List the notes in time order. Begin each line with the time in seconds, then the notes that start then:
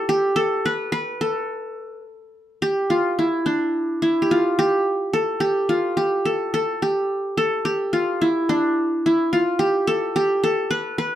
Already playing: F4 A4
0.09 G4
0.36 A4
0.66 B4
0.92 B4
1.21 A4
2.62 G4
2.90 F4
3.19 E4
3.46 D4
4.02 E4
4.22 G4
4.31 F4
4.59 G4
5.13 A4
5.40 G4
5.69 F4
5.97 G4
6.25 A4
6.54 A4
6.82 G4
7.37 A4
7.65 G4
7.93 F4
8.21 E4
8.49 D4
9.06 E4
9.33 F4
9.59 G4
9.87 A4
10.16 G4
10.44 A4
10.71 B4
10.98 B4